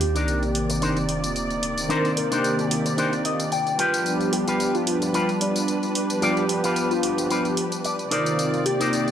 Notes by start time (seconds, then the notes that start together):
Already playing: C3 D#3 A#3 D5, sub drop
0.01 G4, open hi-hat
0.15 D#3 A#3 C4 D4 D#4 G4 A#4 D5, closed hi-hat, tambourine
0.28 closed hi-hat, tambourine
0.43 closed hi-hat, tambourine
0.55 open hi-hat
0.69 muted clean electric guitar stroke, closed hi-hat, tambourine
0.81 D4 D#4 A#4 C5, closed hi-hat, tambourine
0.97 closed hi-hat, tambourine
1.08 D#3 A#3 C4 D4 F4, muted clean electric guitar stroke, open hi-hat
1.24 closed hi-hat, tambourine
1.36 closed hi-hat, tambourine
1.50 closed hi-hat, tambourine
1.63 open hi-hat
1.77 D#3 A#3 C4 C5 D5, closed hi-hat, tambourine
1.89 D4 D#4 A#4 C5, closed hi-hat, tambourine
2.05 closed hi-hat, tambourine
2.17 A#4, open hi-hat
2.31 D#3 A#3 C4 D4 D#4 G4 A#4 C5 D5, closed hi-hat, tambourine
2.44 closed hi-hat, tambourine
2.59 closed hi-hat, tambourine
2.71 open hi-hat
2.85 muted clean electric guitar stroke, closed hi-hat, tambourine
2.97 D4 D#4 A#4 C5, closed hi-hat, tambourine
3.13 closed hi-hat, tambourine
3.25 D#3 A#3 C4 D4 F4 D#5, muted clean electric guitar stroke, open hi-hat
3.40 closed hi-hat, tambourine
3.52 G5, closed hi-hat, tambourine
3.67 closed hi-hat, tambourine
3.79 G3 D4 F4 G4 B4 G5, open hi-hat
3.93 F3 G3 B3 D4 G4, closed hi-hat, tambourine
4.06 closed hi-hat, tambourine
4.21 closed hi-hat, tambourine
4.33 G4, open hi-hat
4.47 F3 G3 B3 D4 F4 G4 B4, closed hi-hat, tambourine
4.60 closed hi-hat, tambourine
4.75 F4, closed hi-hat, tambourine
4.87 F4, open hi-hat
5.01 muted clean electric guitar stroke, closed hi-hat, tambourine
5.14 F4 G4 B4, closed hi-hat, tambourine
5.29 closed hi-hat, tambourine
5.41 F3 G3 B3 D4 F4, muted clean electric guitar stroke, open hi-hat
5.56 closed hi-hat, tambourine
5.68 closed hi-hat, tambourine
5.83 closed hi-hat, tambourine
5.95 G4, open hi-hat
6.10 F3 G3 B3 D4 G4, closed hi-hat, tambourine
6.22 F4 G4 D5, closed hi-hat, tambourine
6.37 closed hi-hat, tambourine
6.49 open hi-hat
6.63 F3 G3 B3 D4 F4 G4 B4, closed hi-hat, tambourine
6.76 closed hi-hat, tambourine
6.91 F4, closed hi-hat, tambourine
7.03 open hi-hat
7.17 muted clean electric guitar stroke, closed hi-hat, tambourine
7.30 F4 G4 B4, closed hi-hat, tambourine
7.45 closed hi-hat, tambourine
7.57 muted clean electric guitar stroke, open hi-hat
7.72 closed hi-hat, tambourine
7.84 D5, closed hi-hat, tambourine
7.99 closed hi-hat, tambourine
8.11 C3 D#3 A#3 C4 D#4 F4 A#4 C5 D5, open hi-hat
8.26 closed hi-hat, tambourine
8.39 closed hi-hat, tambourine
8.54 closed hi-hat, tambourine
8.65 G4, open hi-hat
8.80 D#3 A#3 C4 D#4 G4 A#4 C5 D5, closed hi-hat, tambourine
8.93 closed hi-hat, tambourine
9.08 closed hi-hat, tambourine